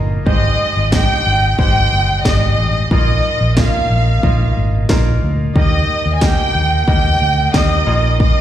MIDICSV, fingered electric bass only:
0, 0, Header, 1, 2, 480
1, 0, Start_track
1, 0, Key_signature, -3, "major"
1, 0, Tempo, 661230
1, 193, Time_signature, 4, 2, 24, 8
1, 6104, End_track
2, 0, Start_track
2, 0, Title_t, "Fingered electric bass"
2, 0, Program_c, 0, 33
2, 0, Note_on_c, 0, 31, 72
2, 153, Note_off_c, 0, 31, 0
2, 193, Note_on_c, 0, 32, 84
2, 390, Note_off_c, 0, 32, 0
2, 559, Note_on_c, 0, 32, 83
2, 753, Note_off_c, 0, 32, 0
2, 918, Note_on_c, 0, 32, 73
2, 1113, Note_off_c, 0, 32, 0
2, 1153, Note_on_c, 0, 32, 90
2, 1350, Note_off_c, 0, 32, 0
2, 1397, Note_on_c, 0, 31, 70
2, 1592, Note_off_c, 0, 31, 0
2, 1636, Note_on_c, 0, 32, 71
2, 1832, Note_off_c, 0, 32, 0
2, 1875, Note_on_c, 0, 33, 72
2, 2071, Note_off_c, 0, 33, 0
2, 2114, Note_on_c, 0, 34, 86
2, 2310, Note_off_c, 0, 34, 0
2, 2474, Note_on_c, 0, 34, 74
2, 2671, Note_off_c, 0, 34, 0
2, 2834, Note_on_c, 0, 34, 74
2, 3031, Note_off_c, 0, 34, 0
2, 3074, Note_on_c, 0, 34, 81
2, 3271, Note_off_c, 0, 34, 0
2, 3319, Note_on_c, 0, 32, 69
2, 3514, Note_off_c, 0, 32, 0
2, 3553, Note_on_c, 0, 34, 83
2, 3750, Note_off_c, 0, 34, 0
2, 3796, Note_on_c, 0, 38, 63
2, 3992, Note_off_c, 0, 38, 0
2, 4034, Note_on_c, 0, 39, 82
2, 4231, Note_off_c, 0, 39, 0
2, 4397, Note_on_c, 0, 39, 77
2, 4593, Note_off_c, 0, 39, 0
2, 4754, Note_on_c, 0, 39, 78
2, 4951, Note_off_c, 0, 39, 0
2, 4992, Note_on_c, 0, 39, 84
2, 5190, Note_off_c, 0, 39, 0
2, 5238, Note_on_c, 0, 38, 69
2, 5434, Note_off_c, 0, 38, 0
2, 5476, Note_on_c, 0, 39, 77
2, 5672, Note_off_c, 0, 39, 0
2, 5713, Note_on_c, 0, 34, 68
2, 6104, Note_off_c, 0, 34, 0
2, 6104, End_track
0, 0, End_of_file